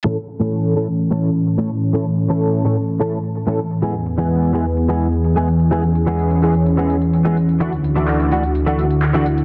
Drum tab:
HH |x-x---xxx-xxx-xx|xxx-xxxxx-xxxxxx|xxxxxxxxxxxxxxxx|xxxxxxxxxxxxxxxx|
CP |----------------|----------------|----------------|----------------|

HH |xxxxxxxxxxxxxxxx|
CP |----x-------x---|